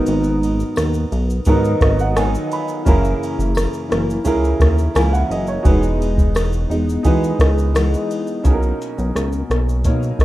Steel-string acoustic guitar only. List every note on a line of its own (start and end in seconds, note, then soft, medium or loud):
0.00 1.48 G#2 medium
0.00 1.46 D#3 medium
0.00 1.48 F#3 medium
0.00 1.47 B3 medium
0.00 1.47 D#4 medium
1.47 2.15 D#3 medium
1.47 2.17 F#3 medium
1.47 2.17 B3 medium
1.47 2.17 D#4 medium
2.17 2.85 D#3 medium
2.17 2.85 F#3 medium
2.17 2.86 B3 medium
2.17 2.86 D#4 medium
2.85 3.90 F#2 medium
2.85 3.90 C#3 medium
2.85 3.91 E3 medium
2.85 3.89 A#3 medium
2.85 3.89 E4 medium
3.89 4.26 E3 soft
3.89 4.24 A#3 soft
3.89 4.25 E4 medium
4.24 4.92 C#3 medium
4.24 4.94 A#3 medium
4.24 4.96 E4 medium
4.94 5.64 C#3 medium
4.94 5.64 E3 medium
4.94 5.65 A#3 medium
4.94 5.66 E4 medium
5.64 6.70 E3 medium
5.64 6.70 G#3 medium
5.64 6.70 B3 medium
5.64 6.69 D#4 loud
6.69 7.04 G#3 soft
6.69 7.04 B3 medium
6.69 7.05 D#4 medium
7.04 7.73 E3 medium
7.04 7.73 G#3 medium
7.04 7.75 B3 medium
7.04 7.75 D#4 medium
7.74 8.42 E3 medium
7.74 8.44 G#3 medium
7.74 8.45 B3 medium
7.74 8.46 D#4 medium
8.43 9.83 B2 medium
8.43 9.85 F#3 medium
8.43 9.85 A#3 medium
8.43 9.86 D#4 medium
9.84 10.25 B2 medium
9.84 10.25 F#3 medium
9.84 10.25 A#3 medium
9.84 10.25 D#4 medium